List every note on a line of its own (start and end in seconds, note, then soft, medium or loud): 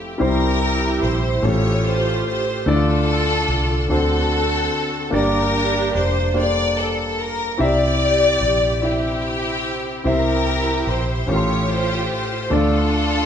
0.00 0.16 F1 medium
0.00 0.21 F3 medium
0.00 0.21 A3 medium
0.00 0.18 C4 medium
0.00 0.18 E4 medium
0.00 0.18 G4 medium
0.00 0.20 G4 medium
0.00 0.22 E5 medium
0.18 0.99 C2 loud
0.18 1.39 C3 medium
0.18 1.14 G3 medium
0.18 1.15 C4 medium
0.18 1.15 E4 medium
0.18 1.15 G4 medium
0.18 1.16 C5 medium
0.23 1.41 E4 medium
0.23 1.41 G4 medium
0.23 1.00 A#4 loud
1.03 1.40 A#1 medium
1.03 1.45 C5 medium
1.42 2.22 A1 loud
1.42 2.63 A2 medium
1.42 2.38 A3 medium
1.42 2.38 C#4 medium
1.42 2.39 F4 medium
1.42 2.39 G4 medium
1.42 2.39 A4 medium
1.42 1.86 C#5 loud
1.47 2.65 F4 medium
1.47 2.64 G4 medium
1.87 2.27 C5 loud
2.28 2.65 C5 medium
2.66 3.45 D2 loud
2.66 3.86 D3 medium
2.66 3.61 A3 medium
2.66 3.62 D4 medium
2.66 3.87 D4 medium
2.66 2.73 E4 medium
2.66 3.87 F4 medium
2.66 3.62 A4 medium
2.66 3.90 A4 loud
2.66 3.63 D5 medium
2.74 3.65 F4 medium
3.48 3.86 C2 medium
3.89 4.68 D2 medium
3.89 5.09 D3 medium
3.89 4.84 C4 medium
3.89 5.10 C4 medium
3.89 4.85 D4 medium
3.89 4.85 F#4 medium
3.89 5.10 F#4 medium
3.89 4.85 A4 medium
3.89 5.10 A4 loud
3.89 4.86 C5 medium
5.11 5.91 G1 loud
5.11 6.32 G2 medium
5.11 6.07 A#3 medium
5.11 6.07 D4 medium
5.11 6.08 G4 medium
5.11 6.08 A#4 medium
5.11 6.08 D5 medium
5.15 6.34 D4 medium
5.15 6.33 G4 medium
5.15 5.92 A#4 loud
5.95 7.55 F1 medium
5.95 6.34 C5 loud
6.34 7.30 A#3 medium
6.34 7.30 D4 medium
6.34 7.31 G4 medium
6.34 6.42 A4 soft
6.34 7.31 C5 medium
6.39 6.79 D5 loud
6.39 7.34 D5 medium
6.79 7.19 A4 loud
7.21 7.60 A#4 loud
7.57 8.38 C2 medium
7.57 8.78 C3 medium
7.57 8.53 C4 medium
7.57 8.54 E4 medium
7.57 8.54 G4 medium
7.57 8.55 C5 medium
7.57 8.55 E5 medium
7.62 8.80 G4 medium
7.62 8.84 D5 loud
8.41 10.01 A#1 medium
8.82 9.77 C4 medium
8.82 10.03 C4 medium
8.82 9.77 E4 medium
8.82 10.03 E4 medium
8.82 9.78 G4 medium
8.82 10.07 G4 loud
8.82 9.78 C5 medium
8.82 9.78 E5 medium
10.04 10.84 C2 loud
10.04 11.24 C3 medium
10.04 11.00 C4 medium
10.04 11.00 E4 medium
10.04 11.26 E4 medium
10.04 11.00 G4 medium
10.04 10.89 A#4 loud
10.04 11.01 C5 medium
10.04 11.01 E5 medium
10.08 11.26 G4 medium
10.87 11.25 A#1 medium
10.87 11.30 C5 medium
11.27 12.06 A1 loud
11.27 12.48 A2 medium
11.27 12.23 C#4 medium
11.27 12.23 F4 medium
11.27 12.49 F4 medium
11.27 12.23 G4 medium
11.27 12.49 G4 medium
11.27 12.24 A4 medium
11.27 11.36 A#4 medium
11.27 11.71 C#5 medium
11.36 12.27 C6 medium
11.71 12.11 C5 loud
12.13 12.50 C5 medium
12.50 13.26 D2 loud
12.50 13.26 D3 medium
12.50 13.26 A3 medium
12.50 13.26 D4 medium
12.50 13.26 F4 medium
12.50 13.26 A4 medium
12.50 13.26 A4 loud
12.50 13.26 D5 medium